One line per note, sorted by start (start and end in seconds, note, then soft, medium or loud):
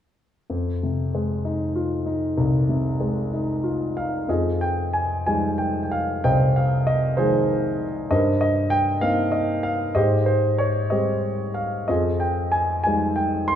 0.50 2.34 F2 soft
0.83 2.03 C3 soft
1.15 2.34 G#3 soft
1.45 2.05 D#4 soft
1.76 2.96 F4 soft
2.06 3.28 D#4 soft
2.38 4.24 C2 soft
2.69 3.92 C3 soft
3.00 4.25 G#3 soft
3.33 3.95 D#4 soft
3.64 4.26 F4 soft
3.96 4.28 D#4 soft
3.96 4.30 F5 medium
4.28 6.20 F2 soft
4.28 5.23 F4 soft
4.28 5.23 G#4 soft
4.28 4.63 D#5 soft
4.61 4.92 G5 medium
4.93 5.24 G#5 medium
5.26 7.14 F3 soft
5.26 7.14 G3 soft
5.26 7.14 G#3 soft
5.26 7.14 D#4 soft
5.26 5.60 G#5 medium
5.58 5.82 G5 soft
5.83 5.91 G5 soft
5.91 6.22 F5 medium
6.24 8.07 C2 medium
6.24 7.14 C5 soft
6.24 6.85 D#5 soft
6.24 6.54 G5 medium
6.56 6.85 F5 medium
6.87 7.19 D#5 medium
7.17 8.08 D#3 soft
7.17 8.08 F3 soft
7.17 8.08 G#3 soft
7.17 8.06 D#4 soft
7.17 8.06 G#4 soft
7.17 7.83 C5 medium
8.11 9.92 G2 medium
8.11 8.99 A#4 soft
8.11 8.99 C5 soft
8.11 8.39 D#5 medium
8.41 8.70 D#5 medium
8.70 9.00 G5 medium
9.01 9.93 A#3 soft
9.01 9.93 C4 soft
9.01 9.93 D#4 soft
9.01 9.34 F5 medium
9.32 9.61 D#5 medium
9.63 9.96 F5 medium
9.95 11.85 G#2 soft
9.95 10.88 G4 soft
9.95 10.25 C5 soft
9.95 10.25 D#5 medium
10.26 10.60 C5 medium
10.58 10.89 C#5 medium
10.90 11.86 G3 soft
10.90 11.86 G#3 soft
10.90 11.86 C4 soft
10.90 11.85 G4 soft
10.90 11.85 C5 soft
10.90 11.52 D#5 medium
11.54 11.89 F5 medium
11.88 13.55 F2 soft
11.88 12.82 F4 soft
11.88 12.83 G#4 soft
11.88 12.22 D#5 medium
12.20 12.54 G5 medium
12.52 12.82 G#5 medium
12.84 13.55 F3 soft
12.84 13.55 G3 soft
12.84 13.55 G#3 soft
12.84 13.55 D#4 soft
12.84 13.18 G#5 medium
13.16 13.46 G5 medium
13.48 13.55 C6 medium